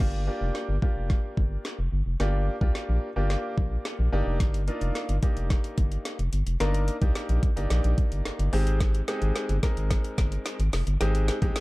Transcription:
0.00 G1 A#3 D4 F4 G4, kick, snare, crash
0.27 A#3 D4 F4 G4
0.41 F1
0.55 snare
0.69 G1
0.82 A#3 D4 F4 G4, kick
0.96 F1
1.10 kick, snare
1.37 G1, kick
1.65 snare
1.79 F1
1.92 G1
2.06 F1
2.20 G1 A#3 D4 F4 G4, snare
2.61 C2 A#3 D4 F4 G4, kick
2.75 snare
2.89 A#1
3.16 G1 A#3 D4 F4 G4
3.30 snare
3.58 A#1, kick
3.85 snare
3.99 A#1
4.12 G1 A#3 D4 D#4 G4
4.26 F1
4.40 G1, kick, snare, closed hi-hat
4.54 closed hi-hat
4.68 A#3 D4 D#4 F4, closed hi-hat
4.81 F1, closed hi-hat
4.95 snare, closed hi-hat
5.09 G1, closed hi-hat
5.23 A#3 D4 D#4 G4, kick, closed hi-hat
5.37 F1, closed hi-hat
5.50 kick, snare, closed hi-hat
5.64 closed hi-hat
5.78 G1, kick, closed hi-hat
5.92 closed hi-hat
6.05 snare, closed hi-hat
6.19 F1, closed hi-hat
6.33 G1, closed hi-hat
6.47 F1, closed hi-hat
6.60 G1 A#3 D4 D#4 A#4, snare, closed hi-hat
6.74 closed hi-hat
6.88 closed hi-hat
7.01 C2 A#3 D4 D#4 G4, kick, closed hi-hat
7.15 snare, closed hi-hat
7.29 A#1, closed hi-hat
7.43 kick, closed hi-hat
7.56 G1 A#3 D4 D#4 G4, closed hi-hat
7.70 A#1, snare, closed hi-hat
7.84 A#1, closed hi-hat
7.98 kick, closed hi-hat
8.12 G1, closed hi-hat
8.25 G1, snare, closed hi-hat
8.39 G1, closed hi-hat
8.53 G#1 G#3 C4 D#4 G4, open hi-hat
8.67 closed hi-hat
8.80 kick, snare, closed hi-hat
8.95 closed hi-hat
9.08 G#3 C4 D#4 G4, snare, closed hi-hat
9.22 G#1, closed hi-hat
9.36 snare, closed hi-hat
9.49 G1, closed hi-hat
9.63 G#3 C4 D#4 A#4, kick, snare, closed hi-hat
9.77 G#1, closed hi-hat
9.91 kick, snare, closed hi-hat
10.04 closed hi-hat
10.18 G1, kick, snare, closed hi-hat
10.32 closed hi-hat
10.46 snare, closed hi-hat
10.59 G#1, closed hi-hat
10.73 F1, snare, open hi-hat
10.87 G1, closed hi-hat
11.00 G#1 G#3 C4 D#4 G4, snare, closed hi-hat
11.15 closed hi-hat
11.28 snare, closed hi-hat
11.42 A#1 G#3 C4 D#4 G4, kick, closed hi-hat
11.56 snare, closed hi-hat

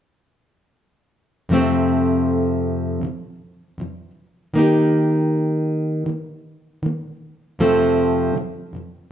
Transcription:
1.49 F2 C3 F3 A3
1.54 C4 A4
3.01 F2 C3 F3
3.78 F2 C3 F3
4.54 D#3 A#3 D#4
4.59 G4
6.06 D#3 A#3
6.83 D#3 A#3
7.59 F2 C3 F3 A3 C4 A4
8.34 F2 C3 F3
8.73 F2 C3 F3

